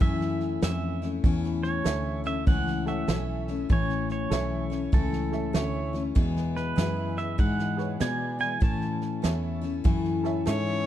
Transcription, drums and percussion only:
0.01 kick, snare
0.21 snare
0.41 snare
0.62 snare, hi-hat pedal
1.02 snare
1.24 kick, snare
1.44 snare
1.64 snare
1.85 snare, hi-hat pedal
2.25 snare
2.47 kick, snare
2.67 snare
2.87 snare
3.08 snare, hi-hat pedal
3.48 snare
3.70 kick, snare
3.90 snare
4.09 snare
4.32 snare, hi-hat pedal
4.71 snare
4.93 kick, snare
5.13 snare
5.33 snare
5.54 snare, hi-hat pedal
5.94 snare
6.16 kick, snare
6.36 snare
6.56 snare
6.78 snare, hi-hat pedal
7.17 snare
7.39 kick, snare
7.59 snare
7.79 snare
8.00 snare, hi-hat pedal
8.40 snare
8.62 kick, snare
8.82 snare
9.01 snare
9.24 snare, hi-hat pedal
9.63 snare
9.85 kick, snare
10.05 snare
10.25 snare
10.47 snare, hi-hat pedal

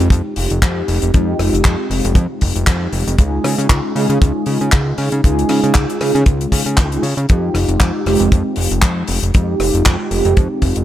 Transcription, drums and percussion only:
0.00 closed hi-hat
0.10 kick, closed hi-hat
0.36 open hi-hat
0.50 closed hi-hat
0.62 kick, clap, closed hi-hat
0.88 open hi-hat
1.02 closed hi-hat
1.14 kick, closed hi-hat
1.39 cross-stick, open hi-hat
1.55 closed hi-hat
1.64 kick, clap, closed hi-hat
1.91 open hi-hat
2.05 closed hi-hat
2.15 kick, closed hi-hat
2.41 kick, open hi-hat
2.56 closed hi-hat
2.67 kick, clap, closed hi-hat
2.93 open hi-hat
3.08 closed hi-hat
3.18 kick, closed hi-hat
3.44 cross-stick, open hi-hat
3.59 closed hi-hat
3.69 kick, clap, closed hi-hat
3.96 open hi-hat
4.10 closed hi-hat
4.22 kick, closed hi-hat
4.46 open hi-hat
4.61 closed hi-hat
4.72 kick, clap, closed hi-hat
4.98 open hi-hat
5.12 closed hi-hat
5.24 kick, closed hi-hat
5.39 closed hi-hat
5.49 cross-stick, open hi-hat
5.64 closed hi-hat
5.74 kick, clap, closed hi-hat
5.90 closed hi-hat
6.01 cross-stick, open hi-hat
6.16 closed hi-hat
6.26 kick, closed hi-hat
6.41 closed hi-hat
6.52 kick, open hi-hat
6.67 closed hi-hat
6.77 kick, clap, closed hi-hat
6.92 closed hi-hat
7.03 open hi-hat
7.18 closed hi-hat
7.29 kick, closed hi-hat
7.55 cross-stick, open hi-hat
7.69 closed hi-hat
7.80 kick, clap, closed hi-hat
8.06 cross-stick, open hi-hat
8.20 closed hi-hat
8.32 kick, closed hi-hat
8.56 open hi-hat
8.71 closed hi-hat
8.82 kick, clap, closed hi-hat
9.08 open hi-hat
9.23 closed hi-hat
9.34 kick, closed hi-hat
9.60 cross-stick, open hi-hat
9.75 closed hi-hat
9.86 kick, clap, closed hi-hat
10.11 open hi-hat
10.25 closed hi-hat
10.37 kick, closed hi-hat
10.62 kick, open hi-hat
10.76 closed hi-hat

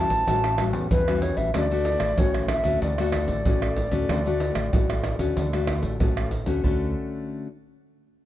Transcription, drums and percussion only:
0.10 pandeiro, shaker, surdo
0.28 pandeiro, shaker, surdo
0.44 pandeiro, tamborim, shaker
0.58 pandeiro, tamborim, shaker, surdo
0.73 pandeiro, shaker, surdo
0.91 pandeiro, shaker, surdo
1.08 pandeiro, tamborim, shaker
1.22 pandeiro
1.37 pandeiro, shaker, surdo
1.54 pandeiro, tamborim, shaker, surdo
1.71 pandeiro, shaker
1.85 pandeiro, shaker
2.00 pandeiro, tamborim, shaker
2.18 pandeiro, shaker, surdo
2.34 pandeiro, tamborim, shaker
2.48 pandeiro, tamborim, shaker
2.64 pandeiro, shaker, surdo
2.82 pandeiro, shaker, surdo
2.98 pandeiro, tamborim, shaker
3.12 pandeiro, tamborim, shaker, surdo
3.28 pandeiro, shaker, surdo
3.45 pandeiro, shaker, surdo
3.62 pandeiro, tamborim, shaker
3.76 pandeiro, surdo
3.91 pandeiro, shaker, surdo
4.09 pandeiro, tamborim, shaker, surdo
4.25 pandeiro, shaker
4.40 pandeiro
4.55 pandeiro, tamborim, shaker
4.73 pandeiro, shaker, surdo
4.90 pandeiro, tamborim, shaker
5.04 pandeiro, tamborim, shaker
5.19 pandeiro, shaker, surdo
5.37 pandeiro, shaker, surdo
5.53 pandeiro, tamborim, shaker
5.67 pandeiro, tamborim, surdo
5.83 pandeiro, shaker, surdo
6.00 pandeiro, shaker, surdo
6.17 pandeiro, tamborim, shaker
6.31 pandeiro, surdo
6.46 pandeiro, shaker, surdo
6.64 surdo

